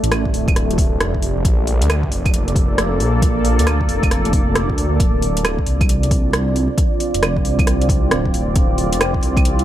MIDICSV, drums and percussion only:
0, 0, Header, 1, 2, 480
1, 0, Start_track
1, 0, Key_signature, -1, "minor"
1, 0, Tempo, 444444
1, 1565, Time_signature, 4, 2, 24, 8
1, 10416, End_track
2, 0, Start_track
2, 0, Title_t, "Drums"
2, 39, Note_on_c, 9, 42, 54
2, 125, Note_off_c, 9, 42, 0
2, 125, Note_on_c, 9, 37, 101
2, 125, Note_on_c, 9, 42, 51
2, 125, Note_on_c, 9, 75, 52
2, 233, Note_off_c, 9, 37, 0
2, 233, Note_off_c, 9, 42, 0
2, 233, Note_off_c, 9, 75, 0
2, 275, Note_on_c, 9, 36, 58
2, 366, Note_on_c, 9, 46, 68
2, 383, Note_off_c, 9, 36, 0
2, 474, Note_off_c, 9, 46, 0
2, 516, Note_on_c, 9, 36, 108
2, 522, Note_on_c, 9, 42, 28
2, 522, Note_on_c, 9, 75, 63
2, 607, Note_off_c, 9, 42, 0
2, 607, Note_on_c, 9, 37, 59
2, 607, Note_on_c, 9, 42, 53
2, 624, Note_off_c, 9, 36, 0
2, 630, Note_off_c, 9, 75, 0
2, 715, Note_off_c, 9, 37, 0
2, 715, Note_off_c, 9, 42, 0
2, 763, Note_on_c, 9, 42, 30
2, 842, Note_on_c, 9, 36, 102
2, 847, Note_on_c, 9, 46, 76
2, 871, Note_off_c, 9, 42, 0
2, 950, Note_off_c, 9, 36, 0
2, 955, Note_off_c, 9, 46, 0
2, 1086, Note_on_c, 9, 37, 102
2, 1086, Note_on_c, 9, 42, 52
2, 1194, Note_off_c, 9, 37, 0
2, 1194, Note_off_c, 9, 42, 0
2, 1237, Note_on_c, 9, 36, 57
2, 1323, Note_on_c, 9, 46, 68
2, 1345, Note_off_c, 9, 36, 0
2, 1431, Note_off_c, 9, 46, 0
2, 1564, Note_on_c, 9, 36, 113
2, 1567, Note_on_c, 9, 42, 58
2, 1672, Note_off_c, 9, 36, 0
2, 1675, Note_off_c, 9, 42, 0
2, 1806, Note_on_c, 9, 46, 80
2, 1914, Note_off_c, 9, 46, 0
2, 1961, Note_on_c, 9, 42, 58
2, 2049, Note_off_c, 9, 42, 0
2, 2049, Note_on_c, 9, 37, 99
2, 2049, Note_on_c, 9, 42, 53
2, 2049, Note_on_c, 9, 75, 55
2, 2157, Note_off_c, 9, 37, 0
2, 2157, Note_off_c, 9, 42, 0
2, 2157, Note_off_c, 9, 75, 0
2, 2197, Note_on_c, 9, 36, 57
2, 2287, Note_on_c, 9, 46, 69
2, 2305, Note_off_c, 9, 36, 0
2, 2395, Note_off_c, 9, 46, 0
2, 2436, Note_on_c, 9, 36, 102
2, 2438, Note_on_c, 9, 42, 28
2, 2438, Note_on_c, 9, 75, 67
2, 2524, Note_off_c, 9, 42, 0
2, 2524, Note_on_c, 9, 42, 55
2, 2544, Note_off_c, 9, 36, 0
2, 2546, Note_off_c, 9, 75, 0
2, 2632, Note_off_c, 9, 42, 0
2, 2678, Note_on_c, 9, 42, 29
2, 2762, Note_on_c, 9, 36, 100
2, 2766, Note_on_c, 9, 46, 78
2, 2786, Note_off_c, 9, 42, 0
2, 2870, Note_off_c, 9, 36, 0
2, 2874, Note_off_c, 9, 46, 0
2, 3005, Note_on_c, 9, 37, 95
2, 3005, Note_on_c, 9, 42, 56
2, 3113, Note_off_c, 9, 37, 0
2, 3113, Note_off_c, 9, 42, 0
2, 3243, Note_on_c, 9, 46, 69
2, 3351, Note_off_c, 9, 46, 0
2, 3480, Note_on_c, 9, 36, 117
2, 3482, Note_on_c, 9, 42, 58
2, 3588, Note_off_c, 9, 36, 0
2, 3590, Note_off_c, 9, 42, 0
2, 3723, Note_on_c, 9, 46, 79
2, 3831, Note_off_c, 9, 46, 0
2, 3879, Note_on_c, 9, 42, 60
2, 3961, Note_off_c, 9, 42, 0
2, 3961, Note_on_c, 9, 37, 100
2, 3961, Note_on_c, 9, 42, 56
2, 3961, Note_on_c, 9, 75, 57
2, 4069, Note_off_c, 9, 37, 0
2, 4069, Note_off_c, 9, 42, 0
2, 4069, Note_off_c, 9, 75, 0
2, 4112, Note_on_c, 9, 36, 58
2, 4199, Note_on_c, 9, 46, 67
2, 4220, Note_off_c, 9, 36, 0
2, 4307, Note_off_c, 9, 46, 0
2, 4352, Note_on_c, 9, 36, 105
2, 4357, Note_on_c, 9, 42, 32
2, 4357, Note_on_c, 9, 75, 69
2, 4442, Note_off_c, 9, 42, 0
2, 4442, Note_on_c, 9, 37, 61
2, 4442, Note_on_c, 9, 42, 57
2, 4460, Note_off_c, 9, 36, 0
2, 4465, Note_off_c, 9, 75, 0
2, 4550, Note_off_c, 9, 37, 0
2, 4550, Note_off_c, 9, 42, 0
2, 4593, Note_on_c, 9, 42, 31
2, 4677, Note_on_c, 9, 46, 77
2, 4678, Note_on_c, 9, 36, 104
2, 4701, Note_off_c, 9, 42, 0
2, 4785, Note_off_c, 9, 46, 0
2, 4786, Note_off_c, 9, 36, 0
2, 4920, Note_on_c, 9, 37, 99
2, 4920, Note_on_c, 9, 42, 55
2, 5028, Note_off_c, 9, 37, 0
2, 5028, Note_off_c, 9, 42, 0
2, 5072, Note_on_c, 9, 36, 59
2, 5161, Note_on_c, 9, 46, 66
2, 5180, Note_off_c, 9, 36, 0
2, 5269, Note_off_c, 9, 46, 0
2, 5398, Note_on_c, 9, 36, 122
2, 5401, Note_on_c, 9, 42, 60
2, 5506, Note_off_c, 9, 36, 0
2, 5509, Note_off_c, 9, 42, 0
2, 5642, Note_on_c, 9, 46, 74
2, 5750, Note_off_c, 9, 46, 0
2, 5797, Note_on_c, 9, 42, 60
2, 5881, Note_off_c, 9, 42, 0
2, 5881, Note_on_c, 9, 37, 101
2, 5881, Note_on_c, 9, 42, 58
2, 5881, Note_on_c, 9, 75, 56
2, 5989, Note_off_c, 9, 37, 0
2, 5989, Note_off_c, 9, 42, 0
2, 5989, Note_off_c, 9, 75, 0
2, 6032, Note_on_c, 9, 36, 60
2, 6118, Note_on_c, 9, 46, 63
2, 6140, Note_off_c, 9, 36, 0
2, 6226, Note_off_c, 9, 46, 0
2, 6273, Note_on_c, 9, 36, 108
2, 6275, Note_on_c, 9, 42, 32
2, 6275, Note_on_c, 9, 75, 66
2, 6363, Note_off_c, 9, 42, 0
2, 6363, Note_on_c, 9, 42, 56
2, 6381, Note_off_c, 9, 36, 0
2, 6383, Note_off_c, 9, 75, 0
2, 6471, Note_off_c, 9, 42, 0
2, 6516, Note_on_c, 9, 42, 34
2, 6599, Note_on_c, 9, 36, 104
2, 6600, Note_on_c, 9, 46, 74
2, 6624, Note_off_c, 9, 42, 0
2, 6707, Note_off_c, 9, 36, 0
2, 6708, Note_off_c, 9, 46, 0
2, 6841, Note_on_c, 9, 37, 105
2, 6841, Note_on_c, 9, 42, 58
2, 6949, Note_off_c, 9, 37, 0
2, 6949, Note_off_c, 9, 42, 0
2, 7082, Note_on_c, 9, 46, 62
2, 7190, Note_off_c, 9, 46, 0
2, 7318, Note_on_c, 9, 36, 120
2, 7321, Note_on_c, 9, 42, 59
2, 7426, Note_off_c, 9, 36, 0
2, 7429, Note_off_c, 9, 42, 0
2, 7562, Note_on_c, 9, 46, 69
2, 7670, Note_off_c, 9, 46, 0
2, 7715, Note_on_c, 9, 42, 62
2, 7804, Note_off_c, 9, 42, 0
2, 7804, Note_on_c, 9, 37, 107
2, 7804, Note_on_c, 9, 42, 60
2, 7804, Note_on_c, 9, 75, 54
2, 7912, Note_off_c, 9, 37, 0
2, 7912, Note_off_c, 9, 42, 0
2, 7912, Note_off_c, 9, 75, 0
2, 7954, Note_on_c, 9, 36, 63
2, 8045, Note_on_c, 9, 46, 66
2, 8062, Note_off_c, 9, 36, 0
2, 8153, Note_off_c, 9, 46, 0
2, 8195, Note_on_c, 9, 36, 113
2, 8200, Note_on_c, 9, 42, 32
2, 8200, Note_on_c, 9, 75, 63
2, 8284, Note_off_c, 9, 42, 0
2, 8284, Note_on_c, 9, 37, 65
2, 8284, Note_on_c, 9, 42, 58
2, 8303, Note_off_c, 9, 36, 0
2, 8308, Note_off_c, 9, 75, 0
2, 8392, Note_off_c, 9, 37, 0
2, 8392, Note_off_c, 9, 42, 0
2, 8440, Note_on_c, 9, 42, 32
2, 8521, Note_on_c, 9, 36, 110
2, 8527, Note_on_c, 9, 46, 73
2, 8548, Note_off_c, 9, 42, 0
2, 8629, Note_off_c, 9, 36, 0
2, 8635, Note_off_c, 9, 46, 0
2, 8762, Note_on_c, 9, 37, 107
2, 8762, Note_on_c, 9, 42, 57
2, 8870, Note_off_c, 9, 37, 0
2, 8870, Note_off_c, 9, 42, 0
2, 8916, Note_on_c, 9, 36, 65
2, 9006, Note_on_c, 9, 46, 62
2, 9024, Note_off_c, 9, 36, 0
2, 9114, Note_off_c, 9, 46, 0
2, 9240, Note_on_c, 9, 42, 60
2, 9242, Note_on_c, 9, 36, 127
2, 9348, Note_off_c, 9, 42, 0
2, 9350, Note_off_c, 9, 36, 0
2, 9482, Note_on_c, 9, 46, 70
2, 9590, Note_off_c, 9, 46, 0
2, 9639, Note_on_c, 9, 42, 61
2, 9727, Note_off_c, 9, 42, 0
2, 9727, Note_on_c, 9, 37, 115
2, 9727, Note_on_c, 9, 42, 57
2, 9727, Note_on_c, 9, 75, 53
2, 9835, Note_off_c, 9, 37, 0
2, 9835, Note_off_c, 9, 42, 0
2, 9835, Note_off_c, 9, 75, 0
2, 9875, Note_on_c, 9, 36, 65
2, 9965, Note_on_c, 9, 46, 64
2, 9983, Note_off_c, 9, 36, 0
2, 10073, Note_off_c, 9, 46, 0
2, 10116, Note_on_c, 9, 36, 114
2, 10121, Note_on_c, 9, 42, 32
2, 10121, Note_on_c, 9, 75, 62
2, 10208, Note_off_c, 9, 42, 0
2, 10208, Note_on_c, 9, 42, 59
2, 10224, Note_off_c, 9, 36, 0
2, 10229, Note_off_c, 9, 75, 0
2, 10316, Note_off_c, 9, 42, 0
2, 10359, Note_on_c, 9, 42, 33
2, 10416, Note_off_c, 9, 42, 0
2, 10416, End_track
0, 0, End_of_file